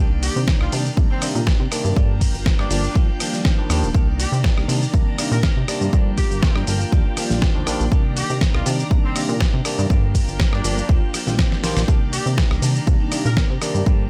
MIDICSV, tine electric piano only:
0, 0, Header, 1, 2, 480
1, 0, Start_track
1, 0, Key_signature, -3, "minor"
1, 0, Tempo, 495868
1, 1900, Time_signature, 4, 2, 24, 8
1, 13648, End_track
2, 0, Start_track
2, 0, Title_t, "Tine electric piano"
2, 0, Program_c, 0, 4
2, 696, Note_on_c, 0, 48, 75
2, 699, Note_on_c, 0, 51, 70
2, 700, Note_on_c, 0, 55, 68
2, 702, Note_on_c, 0, 58, 69
2, 704, Note_on_c, 0, 62, 86
2, 805, Note_off_c, 0, 48, 0
2, 806, Note_off_c, 0, 51, 0
2, 807, Note_off_c, 0, 55, 0
2, 808, Note_off_c, 0, 58, 0
2, 809, Note_off_c, 0, 62, 0
2, 933, Note_on_c, 0, 48, 81
2, 935, Note_on_c, 0, 51, 72
2, 937, Note_on_c, 0, 55, 75
2, 940, Note_on_c, 0, 58, 70
2, 941, Note_on_c, 0, 62, 85
2, 1150, Note_off_c, 0, 48, 0
2, 1151, Note_off_c, 0, 51, 0
2, 1152, Note_off_c, 0, 55, 0
2, 1153, Note_off_c, 0, 58, 0
2, 1154, Note_off_c, 0, 62, 0
2, 1173, Note_on_c, 0, 48, 76
2, 1175, Note_on_c, 0, 51, 66
2, 1177, Note_on_c, 0, 55, 72
2, 1180, Note_on_c, 0, 58, 69
2, 1182, Note_on_c, 0, 62, 84
2, 1342, Note_off_c, 0, 48, 0
2, 1343, Note_off_c, 0, 51, 0
2, 1344, Note_off_c, 0, 55, 0
2, 1346, Note_off_c, 0, 58, 0
2, 1347, Note_off_c, 0, 62, 0
2, 1656, Note_on_c, 0, 48, 102
2, 1658, Note_on_c, 0, 51, 95
2, 1660, Note_on_c, 0, 55, 94
2, 1662, Note_on_c, 0, 58, 92
2, 1664, Note_on_c, 0, 62, 112
2, 1871, Note_off_c, 0, 48, 0
2, 1872, Note_off_c, 0, 51, 0
2, 1873, Note_off_c, 0, 55, 0
2, 1874, Note_off_c, 0, 58, 0
2, 1875, Note_off_c, 0, 62, 0
2, 1893, Note_on_c, 0, 50, 82
2, 1897, Note_on_c, 0, 53, 75
2, 1898, Note_on_c, 0, 55, 72
2, 1899, Note_on_c, 0, 58, 75
2, 1901, Note_on_c, 0, 62, 88
2, 2062, Note_off_c, 0, 50, 0
2, 2064, Note_off_c, 0, 53, 0
2, 2065, Note_off_c, 0, 55, 0
2, 2065, Note_off_c, 0, 58, 0
2, 2066, Note_off_c, 0, 62, 0
2, 2612, Note_on_c, 0, 50, 77
2, 2614, Note_on_c, 0, 53, 72
2, 2616, Note_on_c, 0, 55, 73
2, 2620, Note_on_c, 0, 58, 73
2, 2622, Note_on_c, 0, 62, 90
2, 2723, Note_off_c, 0, 50, 0
2, 2724, Note_off_c, 0, 53, 0
2, 2725, Note_off_c, 0, 55, 0
2, 2727, Note_off_c, 0, 58, 0
2, 2728, Note_off_c, 0, 62, 0
2, 2856, Note_on_c, 0, 51, 84
2, 2856, Note_on_c, 0, 53, 76
2, 2860, Note_on_c, 0, 55, 73
2, 2861, Note_on_c, 0, 58, 77
2, 2864, Note_on_c, 0, 62, 88
2, 2965, Note_off_c, 0, 51, 0
2, 2965, Note_off_c, 0, 53, 0
2, 2967, Note_off_c, 0, 55, 0
2, 2967, Note_off_c, 0, 58, 0
2, 2969, Note_off_c, 0, 62, 0
2, 3095, Note_on_c, 0, 51, 80
2, 3096, Note_on_c, 0, 53, 74
2, 3099, Note_on_c, 0, 55, 74
2, 3100, Note_on_c, 0, 58, 73
2, 3102, Note_on_c, 0, 62, 89
2, 3435, Note_off_c, 0, 51, 0
2, 3435, Note_off_c, 0, 53, 0
2, 3437, Note_off_c, 0, 55, 0
2, 3437, Note_off_c, 0, 58, 0
2, 3438, Note_off_c, 0, 62, 0
2, 3464, Note_on_c, 0, 51, 90
2, 3465, Note_on_c, 0, 53, 84
2, 3466, Note_on_c, 0, 55, 85
2, 3469, Note_on_c, 0, 58, 80
2, 3469, Note_on_c, 0, 62, 97
2, 3551, Note_off_c, 0, 51, 0
2, 3552, Note_off_c, 0, 53, 0
2, 3552, Note_off_c, 0, 55, 0
2, 3554, Note_off_c, 0, 58, 0
2, 3554, Note_off_c, 0, 62, 0
2, 3576, Note_on_c, 0, 51, 91
2, 3578, Note_on_c, 0, 53, 81
2, 3579, Note_on_c, 0, 55, 83
2, 3581, Note_on_c, 0, 58, 82
2, 3584, Note_on_c, 0, 62, 104
2, 3743, Note_off_c, 0, 51, 0
2, 3744, Note_off_c, 0, 53, 0
2, 3745, Note_off_c, 0, 55, 0
2, 3746, Note_off_c, 0, 58, 0
2, 3747, Note_off_c, 0, 62, 0
2, 3816, Note_on_c, 0, 48, 85
2, 3816, Note_on_c, 0, 51, 74
2, 3819, Note_on_c, 0, 58, 78
2, 3820, Note_on_c, 0, 55, 78
2, 3823, Note_on_c, 0, 62, 93
2, 3925, Note_off_c, 0, 48, 0
2, 3925, Note_off_c, 0, 51, 0
2, 3926, Note_off_c, 0, 58, 0
2, 3927, Note_off_c, 0, 55, 0
2, 3928, Note_off_c, 0, 62, 0
2, 4537, Note_on_c, 0, 48, 72
2, 4539, Note_on_c, 0, 51, 71
2, 4540, Note_on_c, 0, 55, 71
2, 4543, Note_on_c, 0, 58, 66
2, 4543, Note_on_c, 0, 62, 82
2, 4645, Note_off_c, 0, 48, 0
2, 4646, Note_off_c, 0, 51, 0
2, 4647, Note_off_c, 0, 55, 0
2, 4648, Note_off_c, 0, 58, 0
2, 4649, Note_off_c, 0, 62, 0
2, 4773, Note_on_c, 0, 48, 80
2, 4774, Note_on_c, 0, 51, 75
2, 4777, Note_on_c, 0, 55, 72
2, 4778, Note_on_c, 0, 58, 75
2, 4780, Note_on_c, 0, 62, 89
2, 4990, Note_off_c, 0, 48, 0
2, 4990, Note_off_c, 0, 51, 0
2, 4992, Note_off_c, 0, 55, 0
2, 4992, Note_off_c, 0, 58, 0
2, 4993, Note_off_c, 0, 62, 0
2, 5015, Note_on_c, 0, 48, 76
2, 5017, Note_on_c, 0, 51, 70
2, 5019, Note_on_c, 0, 55, 72
2, 5021, Note_on_c, 0, 58, 72
2, 5021, Note_on_c, 0, 62, 84
2, 5183, Note_off_c, 0, 48, 0
2, 5184, Note_off_c, 0, 51, 0
2, 5185, Note_off_c, 0, 55, 0
2, 5186, Note_off_c, 0, 58, 0
2, 5186, Note_off_c, 0, 62, 0
2, 5496, Note_on_c, 0, 48, 106
2, 5496, Note_on_c, 0, 51, 93
2, 5498, Note_on_c, 0, 55, 91
2, 5501, Note_on_c, 0, 58, 92
2, 5502, Note_on_c, 0, 62, 108
2, 5711, Note_off_c, 0, 48, 0
2, 5712, Note_off_c, 0, 51, 0
2, 5713, Note_off_c, 0, 55, 0
2, 5714, Note_off_c, 0, 58, 0
2, 5714, Note_off_c, 0, 62, 0
2, 5732, Note_on_c, 0, 50, 85
2, 5735, Note_on_c, 0, 53, 76
2, 5736, Note_on_c, 0, 55, 71
2, 5738, Note_on_c, 0, 58, 73
2, 5739, Note_on_c, 0, 62, 89
2, 5902, Note_off_c, 0, 50, 0
2, 5903, Note_off_c, 0, 53, 0
2, 5904, Note_off_c, 0, 55, 0
2, 5905, Note_off_c, 0, 58, 0
2, 5905, Note_off_c, 0, 62, 0
2, 6455, Note_on_c, 0, 50, 77
2, 6456, Note_on_c, 0, 53, 73
2, 6459, Note_on_c, 0, 55, 72
2, 6461, Note_on_c, 0, 58, 73
2, 6463, Note_on_c, 0, 62, 86
2, 6564, Note_off_c, 0, 50, 0
2, 6565, Note_off_c, 0, 53, 0
2, 6566, Note_off_c, 0, 55, 0
2, 6567, Note_off_c, 0, 58, 0
2, 6568, Note_off_c, 0, 62, 0
2, 6698, Note_on_c, 0, 51, 83
2, 6699, Note_on_c, 0, 53, 78
2, 6702, Note_on_c, 0, 55, 76
2, 6704, Note_on_c, 0, 58, 76
2, 6704, Note_on_c, 0, 62, 91
2, 6806, Note_off_c, 0, 51, 0
2, 6806, Note_off_c, 0, 53, 0
2, 6808, Note_off_c, 0, 55, 0
2, 6809, Note_off_c, 0, 58, 0
2, 6809, Note_off_c, 0, 62, 0
2, 6938, Note_on_c, 0, 51, 82
2, 6942, Note_on_c, 0, 53, 76
2, 6943, Note_on_c, 0, 55, 74
2, 6943, Note_on_c, 0, 58, 74
2, 6947, Note_on_c, 0, 62, 88
2, 7276, Note_off_c, 0, 51, 0
2, 7279, Note_off_c, 0, 53, 0
2, 7279, Note_off_c, 0, 55, 0
2, 7279, Note_off_c, 0, 58, 0
2, 7281, Note_off_c, 0, 62, 0
2, 7306, Note_on_c, 0, 51, 93
2, 7308, Note_on_c, 0, 53, 87
2, 7311, Note_on_c, 0, 55, 85
2, 7311, Note_on_c, 0, 58, 80
2, 7313, Note_on_c, 0, 62, 98
2, 7392, Note_off_c, 0, 51, 0
2, 7393, Note_off_c, 0, 53, 0
2, 7395, Note_off_c, 0, 55, 0
2, 7395, Note_off_c, 0, 58, 0
2, 7396, Note_off_c, 0, 62, 0
2, 7416, Note_on_c, 0, 51, 94
2, 7418, Note_on_c, 0, 53, 82
2, 7420, Note_on_c, 0, 55, 89
2, 7423, Note_on_c, 0, 58, 82
2, 7425, Note_on_c, 0, 62, 101
2, 7584, Note_off_c, 0, 51, 0
2, 7585, Note_off_c, 0, 53, 0
2, 7585, Note_off_c, 0, 55, 0
2, 7587, Note_off_c, 0, 58, 0
2, 7588, Note_off_c, 0, 62, 0
2, 7656, Note_on_c, 0, 48, 89
2, 7659, Note_on_c, 0, 51, 80
2, 7661, Note_on_c, 0, 55, 76
2, 7661, Note_on_c, 0, 58, 78
2, 7664, Note_on_c, 0, 62, 93
2, 7765, Note_off_c, 0, 48, 0
2, 7766, Note_off_c, 0, 51, 0
2, 7767, Note_off_c, 0, 55, 0
2, 7767, Note_off_c, 0, 58, 0
2, 7769, Note_off_c, 0, 62, 0
2, 8378, Note_on_c, 0, 48, 77
2, 8380, Note_on_c, 0, 51, 69
2, 8381, Note_on_c, 0, 55, 67
2, 8385, Note_on_c, 0, 58, 68
2, 8386, Note_on_c, 0, 62, 86
2, 8486, Note_off_c, 0, 48, 0
2, 8487, Note_off_c, 0, 51, 0
2, 8487, Note_off_c, 0, 55, 0
2, 8489, Note_off_c, 0, 58, 0
2, 8490, Note_off_c, 0, 62, 0
2, 8615, Note_on_c, 0, 48, 82
2, 8617, Note_on_c, 0, 51, 74
2, 8618, Note_on_c, 0, 55, 73
2, 8621, Note_on_c, 0, 58, 74
2, 8622, Note_on_c, 0, 62, 91
2, 8831, Note_off_c, 0, 48, 0
2, 8832, Note_off_c, 0, 51, 0
2, 8832, Note_off_c, 0, 55, 0
2, 8834, Note_off_c, 0, 58, 0
2, 8834, Note_off_c, 0, 62, 0
2, 8858, Note_on_c, 0, 48, 75
2, 8860, Note_on_c, 0, 51, 68
2, 8861, Note_on_c, 0, 55, 70
2, 8863, Note_on_c, 0, 58, 68
2, 8865, Note_on_c, 0, 62, 81
2, 9024, Note_off_c, 0, 48, 0
2, 9025, Note_off_c, 0, 51, 0
2, 9026, Note_off_c, 0, 55, 0
2, 9027, Note_off_c, 0, 58, 0
2, 9028, Note_off_c, 0, 62, 0
2, 9338, Note_on_c, 0, 48, 102
2, 9342, Note_on_c, 0, 51, 93
2, 9342, Note_on_c, 0, 55, 93
2, 9346, Note_on_c, 0, 58, 98
2, 9346, Note_on_c, 0, 62, 115
2, 9552, Note_off_c, 0, 48, 0
2, 9554, Note_off_c, 0, 51, 0
2, 9554, Note_off_c, 0, 55, 0
2, 9556, Note_off_c, 0, 58, 0
2, 9557, Note_off_c, 0, 62, 0
2, 10295, Note_on_c, 0, 50, 80
2, 10297, Note_on_c, 0, 53, 75
2, 10301, Note_on_c, 0, 55, 72
2, 10303, Note_on_c, 0, 58, 73
2, 10304, Note_on_c, 0, 62, 91
2, 10404, Note_off_c, 0, 50, 0
2, 10406, Note_off_c, 0, 53, 0
2, 10407, Note_off_c, 0, 55, 0
2, 10408, Note_off_c, 0, 58, 0
2, 10409, Note_off_c, 0, 62, 0
2, 10535, Note_on_c, 0, 51, 79
2, 10537, Note_on_c, 0, 53, 78
2, 10539, Note_on_c, 0, 55, 77
2, 10540, Note_on_c, 0, 58, 75
2, 10543, Note_on_c, 0, 62, 93
2, 10645, Note_off_c, 0, 51, 0
2, 10645, Note_off_c, 0, 53, 0
2, 10646, Note_off_c, 0, 55, 0
2, 10647, Note_off_c, 0, 58, 0
2, 10648, Note_off_c, 0, 62, 0
2, 10901, Note_on_c, 0, 51, 77
2, 10905, Note_on_c, 0, 53, 70
2, 10905, Note_on_c, 0, 55, 68
2, 10906, Note_on_c, 0, 58, 68
2, 10909, Note_on_c, 0, 60, 83
2, 11230, Note_off_c, 0, 51, 0
2, 11232, Note_off_c, 0, 53, 0
2, 11232, Note_off_c, 0, 55, 0
2, 11233, Note_off_c, 0, 58, 0
2, 11234, Note_off_c, 0, 60, 0
2, 11256, Note_on_c, 0, 51, 97
2, 11258, Note_on_c, 0, 53, 93
2, 11259, Note_on_c, 0, 55, 89
2, 11261, Note_on_c, 0, 58, 91
2, 11263, Note_on_c, 0, 65, 110
2, 11423, Note_off_c, 0, 51, 0
2, 11424, Note_off_c, 0, 53, 0
2, 11425, Note_off_c, 0, 55, 0
2, 11426, Note_off_c, 0, 58, 0
2, 11427, Note_off_c, 0, 65, 0
2, 11495, Note_on_c, 0, 48, 84
2, 11496, Note_on_c, 0, 51, 78
2, 11497, Note_on_c, 0, 55, 76
2, 11500, Note_on_c, 0, 58, 76
2, 11503, Note_on_c, 0, 62, 96
2, 11604, Note_off_c, 0, 48, 0
2, 11605, Note_off_c, 0, 51, 0
2, 11605, Note_off_c, 0, 55, 0
2, 11607, Note_off_c, 0, 58, 0
2, 11608, Note_off_c, 0, 62, 0
2, 12212, Note_on_c, 0, 48, 74
2, 12212, Note_on_c, 0, 51, 70
2, 12216, Note_on_c, 0, 55, 72
2, 12217, Note_on_c, 0, 58, 71
2, 12219, Note_on_c, 0, 62, 83
2, 12323, Note_off_c, 0, 48, 0
2, 12323, Note_off_c, 0, 51, 0
2, 12325, Note_off_c, 0, 55, 0
2, 12325, Note_off_c, 0, 58, 0
2, 12326, Note_off_c, 0, 62, 0
2, 12449, Note_on_c, 0, 48, 81
2, 12452, Note_on_c, 0, 51, 75
2, 12453, Note_on_c, 0, 55, 74
2, 12455, Note_on_c, 0, 58, 74
2, 12458, Note_on_c, 0, 62, 90
2, 12668, Note_off_c, 0, 48, 0
2, 12669, Note_off_c, 0, 51, 0
2, 12670, Note_off_c, 0, 55, 0
2, 12671, Note_off_c, 0, 58, 0
2, 12672, Note_off_c, 0, 62, 0
2, 12691, Note_on_c, 0, 48, 73
2, 12693, Note_on_c, 0, 51, 70
2, 12695, Note_on_c, 0, 55, 71
2, 12698, Note_on_c, 0, 58, 70
2, 12698, Note_on_c, 0, 62, 82
2, 12861, Note_off_c, 0, 48, 0
2, 12862, Note_off_c, 0, 51, 0
2, 12863, Note_off_c, 0, 55, 0
2, 12865, Note_off_c, 0, 58, 0
2, 12865, Note_off_c, 0, 62, 0
2, 13176, Note_on_c, 0, 48, 103
2, 13177, Note_on_c, 0, 51, 91
2, 13178, Note_on_c, 0, 55, 94
2, 13180, Note_on_c, 0, 58, 89
2, 13183, Note_on_c, 0, 62, 118
2, 13391, Note_off_c, 0, 48, 0
2, 13392, Note_off_c, 0, 51, 0
2, 13392, Note_off_c, 0, 55, 0
2, 13394, Note_off_c, 0, 58, 0
2, 13395, Note_off_c, 0, 62, 0
2, 13419, Note_on_c, 0, 53, 74
2, 13420, Note_on_c, 0, 55, 76
2, 13422, Note_on_c, 0, 58, 75
2, 13424, Note_on_c, 0, 62, 88
2, 13585, Note_off_c, 0, 53, 0
2, 13585, Note_off_c, 0, 55, 0
2, 13587, Note_off_c, 0, 58, 0
2, 13588, Note_off_c, 0, 62, 0
2, 13648, End_track
0, 0, End_of_file